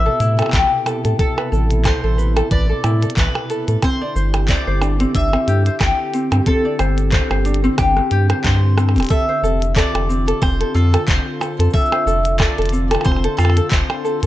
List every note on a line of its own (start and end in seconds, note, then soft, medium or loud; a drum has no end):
0.00 3.83 B2 medium
0.00 3.83 C3 medium
0.00 9.10 E4 medium
0.00 0.68 G4 medium
0.00 5.95 A4 medium
0.00 0.55 E5 loud
0.06 0.19 A4 medium
0.20 0.42 A2 medium
0.20 0.38 E4 medium
0.20 closed hi-hat soft
0.20 shaker medium
0.39 0.47 A4 medium
0.39 closed hi-hat soft
0.39 percussion blips medium
0.39 shaker soft
0.42 percussion blips medium
0.46 percussion blips soft
0.49 0.64 A1 medium
0.49 clap medium
0.49 closed hi-hat soft
0.49 percussion blips soft
0.53 1.16 G4 medium
0.53 kick loud
0.53 percussion blips soft
0.53 shaker soft
0.58 percussion blips soft
0.63 percussion blips soft
0.67 percussion blips soft
0.86 1.03 A4 medium
0.86 closed hi-hat soft
0.86 percussion blips medium
0.86 shaker medium
1.05 1.14 A2 medium
1.05 1.18 A4 medium
1.05 closed hi-hat soft
1.05 shaker soft
1.19 1.36 A4 medium
1.19 1.81 A4 medium
1.19 kick medium
1.19 closed hi-hat soft
1.19 shaker soft
1.37 1.51 B4 medium
1.37 percussion blips medium
1.52 1.92 A1 loud
1.52 1.70 A4 medium
1.52 shaker medium
1.71 closed hi-hat soft
1.71 shaker soft
1.85 2.02 A4 medium
1.85 2.48 C5 medium
1.85 kick medium
1.85 clap medium
1.85 closed hi-hat medium
1.85 percussion blips medium
1.85 shaker soft
2.03 2.42 A1 medium
2.03 2.17 A4 medium
2.18 2.35 B4 medium
2.18 shaker medium
2.36 2.49 A4 loud
2.36 closed hi-hat soft
2.36 percussion blips medium
2.36 shaker soft
2.51 2.73 A1 medium
2.51 2.68 B4 medium
2.51 3.17 D5 loud
2.51 kick medium
2.51 closed hi-hat soft
2.51 shaker soft
2.69 2.82 A4 medium
2.84 3.06 A2 medium
2.84 3.01 E4 medium
2.84 closed hi-hat soft
2.84 percussion blips medium
2.84 shaker medium
3.03 3.11 A4 medium
3.03 closed hi-hat soft
3.03 shaker soft
3.10 closed hi-hat soft
3.17 3.28 A1 medium
3.17 3.79 B4 medium
3.17 kick medium
3.17 clap medium
3.17 shaker soft
3.35 percussion blips medium
3.50 3.67 A4 medium
3.50 closed hi-hat soft
3.50 shaker medium
3.68 3.77 A2 medium
3.68 3.82 A4 medium
3.68 closed hi-hat soft
3.68 shaker soft
3.83 14.26 D3 medium
3.83 4.00 C4 medium
3.83 4.49 C5 medium
3.83 kick medium
3.83 closed hi-hat medium
3.83 percussion blips medium
3.83 shaker soft
4.01 4.14 D5 medium
4.16 4.56 G1 loud
4.16 10.71 G4 medium
4.16 4.33 C5 medium
4.16 shaker medium
4.34 14.26 C4 medium
4.34 closed hi-hat soft
4.34 percussion blips medium
4.34 shaker soft
4.49 4.65 C5 medium
4.49 5.15 D5 medium
4.49 kick medium
4.49 clap loud
4.49 closed hi-hat soft
4.49 shaker soft
4.67 5.06 G1 medium
4.67 4.80 C5 medium
4.82 4.98 D4 medium
4.82 percussion blips medium
4.82 shaker medium
5.00 5.13 C4 medium
5.00 closed hi-hat soft
5.00 shaker soft
5.15 5.37 G1 medium
5.15 5.31 D4 medium
5.15 5.77 E5 medium
5.15 kick medium
5.15 closed hi-hat medium
5.15 shaker soft
5.33 5.46 C4 medium
5.33 percussion blips medium
5.48 5.69 G2 medium
5.48 5.65 G4 medium
5.48 closed hi-hat medium
5.48 shaker medium
5.66 5.74 C5 medium
5.66 closed hi-hat soft
5.66 shaker soft
5.81 5.92 G1 medium
5.81 6.46 G4 medium
5.81 kick loud
5.81 clap medium
5.81 closed hi-hat medium
5.81 percussion blips medium
5.81 shaker soft
6.14 6.30 C4 medium
6.14 closed hi-hat soft
6.14 shaker medium
6.32 6.41 G2 medium
6.32 6.45 C4 medium
6.32 closed hi-hat soft
6.32 percussion blips medium
6.32 shaker soft
6.46 6.63 C4 medium
6.46 7.78 A4 medium
6.46 kick medium
6.46 closed hi-hat medium
6.46 shaker soft
6.65 6.78 D5 medium
6.79 7.20 G1 loud
6.79 6.97 C5 medium
6.79 closed hi-hat soft
6.79 percussion blips medium
6.79 shaker medium
6.98 closed hi-hat soft
6.98 shaker soft
7.12 7.29 C5 medium
7.12 kick loud
7.12 clap medium
7.12 closed hi-hat medium
7.12 shaker soft
7.30 7.69 G1 medium
7.30 7.44 C5 medium
7.30 percussion blips medium
7.45 7.62 D4 medium
7.45 closed hi-hat soft
7.45 shaker medium
7.54 closed hi-hat soft
7.64 7.77 C4 loud
7.64 shaker soft
7.78 8.00 G1 medium
7.78 7.95 D4 medium
7.78 8.74 G4 medium
7.78 kick medium
7.78 cross-stick medium
7.78 closed hi-hat medium
7.78 percussion blips medium
7.78 shaker soft
7.97 8.10 C4 medium
7.97 cross-stick medium
8.11 8.33 G2 medium
8.11 8.29 G4 loud
8.11 closed hi-hat medium
8.11 shaker medium
8.30 8.38 C5 medium
8.30 cross-stick medium
8.30 closed hi-hat soft
8.30 percussion blips medium
8.44 8.97 G2 loud
8.44 9.10 C5 medium
8.44 kick loud
8.44 cross-stick medium
8.44 clap loud
8.44 closed hi-hat medium
8.44 shaker soft
8.77 8.94 C4 medium
8.77 cross-stick medium
8.77 percussion blips medium
8.77 shaker medium
8.89 percussion blips medium
8.96 9.05 D1 loud
8.96 9.10 C4 medium
8.96 closed hi-hat soft
8.96 shaker soft
8.98 closed hi-hat soft
8.98 percussion blips medium
9.00 closed hi-hat soft
9.03 closed hi-hat soft
9.05 closed hi-hat soft
9.07 closed hi-hat soft
9.09 9.27 A4 medium
9.09 9.72 E5 medium
9.09 kick loud
9.09 closed hi-hat soft
9.09 shaker soft
9.29 9.42 C5 medium
9.43 9.83 F1 loud
9.43 9.61 A4 medium
9.43 shaker medium
9.62 closed hi-hat soft
9.62 shaker soft
9.71 14.26 F4 medium
9.76 9.93 A4 medium
9.76 10.41 D5 medium
9.76 kick loud
9.76 clap loud
9.76 shaker soft
9.94 10.33 F1 medium
9.94 10.08 A4 medium
9.94 closed hi-hat soft
9.94 percussion blips medium
10.09 10.26 C4 medium
10.09 shaker medium
10.28 10.41 A4 loud
10.28 closed hi-hat medium
10.28 shaker soft
10.42 10.64 F1 medium
10.42 10.59 C4 medium
10.42 10.74 C5 loud
10.42 kick loud
10.42 percussion blips medium
10.42 shaker soft
10.60 10.74 A4 medium
10.60 closed hi-hat soft
10.74 10.97 F2 medium
10.74 10.93 F4 medium
10.74 11.05 A4 medium
10.74 shaker medium
10.93 11.02 A4 medium
10.93 closed hi-hat medium
10.93 percussion blips medium
10.93 shaker soft
11.07 11.19 F1 medium
11.07 11.73 C5 medium
11.07 kick loud
11.07 clap loud
11.07 shaker soft
11.19 14.26 A4 medium
11.41 11.57 A4 medium
11.41 percussion blips medium
11.41 shaker medium
11.59 11.68 F2 medium
11.59 11.73 A4 medium
11.59 closed hi-hat medium
11.59 shaker soft
11.64 shaker soft
11.70 11.91 A4 medium
11.70 12.38 E5 medium
11.70 kick loud
11.70 shaker soft
11.75 shaker soft
11.81 shaker soft
11.85 shaker soft
11.92 12.06 C5 medium
11.92 percussion blips medium
12.06 12.47 F1 loud
12.06 12.24 A4 medium
12.06 shaker medium
12.25 closed hi-hat medium
12.25 shaker soft
12.38 12.56 A4 medium
12.38 13.04 D5 medium
12.38 kick loud
12.38 clap loud
12.38 percussion blips medium
12.38 shaker soft
12.58 12.97 F1 medium
12.58 12.71 A4 medium
12.58 closed hi-hat soft
12.62 closed hi-hat soft
12.66 closed hi-hat soft
12.69 12.89 C4 medium
12.69 closed hi-hat soft
12.69 shaker medium
12.91 13.04 A4 loud
12.91 closed hi-hat medium
12.91 percussion blips medium
12.91 shaker soft
12.95 percussion blips medium
13.01 13.37 C5 medium
13.01 percussion blips soft
13.05 13.28 F1 loud
13.05 13.22 C4 medium
13.05 kick loud
13.05 percussion blips soft
13.05 shaker soft
13.12 percussion blips soft
13.16 percussion blips soft
13.24 13.37 A4 medium
13.24 closed hi-hat soft
13.37 13.61 F2 medium
13.37 13.56 F4 loud
13.37 13.70 A4 medium
13.37 percussion blips medium
13.37 shaker medium
13.45 percussion blips medium
13.50 percussion blips soft
13.57 13.65 A4 medium
13.57 closed hi-hat medium
13.57 shaker soft
13.70 13.83 F1 medium
13.70 14.26 C5 medium
13.70 kick loud
13.70 clap loud
13.70 shaker soft
13.90 percussion blips medium
14.04 14.21 A4 medium
14.04 shaker medium
14.23 14.26 F2 medium
14.23 14.26 A4 medium
14.23 closed hi-hat medium